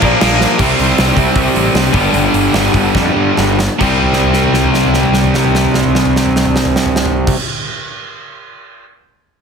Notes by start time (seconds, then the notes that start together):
Already playing: D5
0.01 A#1 A#2 F3 A#3 D4, kick, crash
0.20 A#1 A#2 F3 A#3 D4, snare, crash
0.41 snare
0.57 C2 C3 G3 C4 E4, kick, crash
0.61 G4
0.79 C2, open hi-hat
0.98 C2, snare, open hi-hat
1.15 C2 C3 G3 C4, kick, open hi-hat
1.36 C2, kick, open hi-hat
1.55 A1, open hi-hat
1.74 C2, snare, open hi-hat
1.92 G1 G2 D3 G3 B3 D4 G4, kick, open hi-hat
2.13 G1, open hi-hat
2.34 G1, open hi-hat
2.53 G1 G2 D3 G3, snare, open hi-hat
2.74 G1, kick, open hi-hat
2.95 F2, kick, snare
3.16 G2
3.37 G1, snare
3.59 snare
3.79 C2 C3 G3 C4 E4 G4, kick, crash
4.03 floor tom
4.13 snare
4.23 floor tom
4.33 snare
4.44 floor tom
4.54 snare
4.64 floor tom
4.74 snare
4.83 floor tom
4.94 snare
5.03 floor tom
5.14 snare
5.24 floor tom
5.34 snare
5.45 floor tom
5.55 snare
5.65 floor tom
5.74 snare
5.84 floor tom
5.95 snare
6.05 floor tom
6.16 snare
6.26 floor tom
6.36 snare
6.45 floor tom
6.56 snare
6.65 floor tom
6.76 snare
6.86 floor tom
6.96 snare
7.05 floor tom
7.27 kick, crash